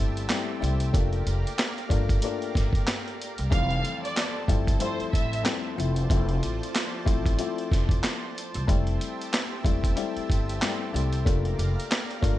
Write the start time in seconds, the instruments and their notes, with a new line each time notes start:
Already playing: upright bass G1, upright piano G3 A3 C4 E4, analog synth pad G4 C5 E5 A5
0.17 closed hi-hat
0.29 upright piano G3 A3 C4 E4, snare, clap, closed hi-hat
0.60 upright bass C2, upright piano G3 A3 C4 E4, closed hi-hat
0.80 closed hi-hat
0.93 upright bass F1, upright piano A3 A#3 D4 F4, analog synth pad D5 F5 A#5, kick, closed hi-hat
1.13 closed hi-hat
1.27 upright bass F1, closed hi-hat
1.47 closed hi-hat
1.59 snare, clap, closed hi-hat
1.78 closed hi-hat
1.89 upright bass G1, upright piano A3 A#3 D4 F4, kick, closed hi-hat
2.09 kick, closed hi-hat
2.22 upright piano A3 A#3 D4 F4, closed hi-hat
2.42 closed hi-hat
2.55 upright bass G1, kick, snare, closed hi-hat
2.73 kick, closed hi-hat
2.87 snare, clap, closed hi-hat
3.08 closed hi-hat
3.22 closed hi-hat
3.38 upright bass C2, closed hi-hat
3.50 upright bass F1, upright piano F2 E3 G3 A3 C4, analog synth pad A4 C5 A5, violin section F5, kick, closed hi-hat
3.70 closed hi-hat
3.85 closed hi-hat
4.03 violin section D5, closed hi-hat
4.17 snare, clap, closed hi-hat
4.48 upright bass G1, upright piano F2 G3 A3 C4 E4, kick, closed hi-hat
4.67 kick, closed hi-hat
4.80 upright piano F2 G3 A3 C4 E4, violin section C5, closed hi-hat
5.00 muted upright bass stroke, closed hi-hat
5.12 upright bass A1, violin section E5, kick, closed hi-hat
5.33 closed hi-hat
5.43 upright piano F2 G3 A3 C4 E4, snare, clap, closed hi-hat
5.76 upright bass F1, upright piano F3 A3 C4 E4, analog synth pad F3 D5 A5, closed hi-hat
5.96 closed hi-hat
6.10 upright bass F1, upright piano F3 A3 C4 E4, kick, closed hi-hat
6.29 closed hi-hat
6.43 closed hi-hat
6.63 closed hi-hat
6.75 snare, clap, closed hi-hat
7.05 upright bass A1, upright piano F3 A3 C4 E4, kick, closed hi-hat
7.26 kick, closed hi-hat
7.39 upright piano F3 A3 C4 E4, closed hi-hat
7.58 closed hi-hat
7.72 upright bass F1, kick, snare, closed hi-hat
7.89 kick, closed hi-hat
8.03 snare, clap, closed hi-hat
8.38 closed hi-hat
8.54 upright bass C2, closed hi-hat
8.67 upright bass F1, upright piano G3 A3 C4 E4, analog synth pad G4 E5 A5, kick, closed hi-hat
8.87 closed hi-hat
9.01 closed hi-hat
9.21 closed hi-hat
9.33 snare, clap, closed hi-hat
9.64 upright bass E1, upright piano G3 A3 C4 E4, kick, closed hi-hat
9.84 kick, closed hi-hat
9.96 upright piano G3 A3 C4 E4, closed hi-hat
10.17 muted upright bass stroke, closed hi-hat
10.30 upright bass G1, kick, closed hi-hat
10.49 closed hi-hat
10.62 upright piano G3 A3 C4 E4, snare, clap, closed hi-hat
10.93 upright bass C2, upright piano G3 A3 C4 E4, closed hi-hat
11.13 closed hi-hat
11.25 upright bass F1, upright piano A3 A#3 D4 F4, analog synth pad D5 F5 A#5, kick, closed hi-hat
11.45 closed hi-hat
11.59 upright bass F1, closed hi-hat
11.80 closed hi-hat
11.91 snare, clap, closed hi-hat
12.11 closed hi-hat
12.21 upright bass G1, upright piano A3 A#3 D4 F4, kick, closed hi-hat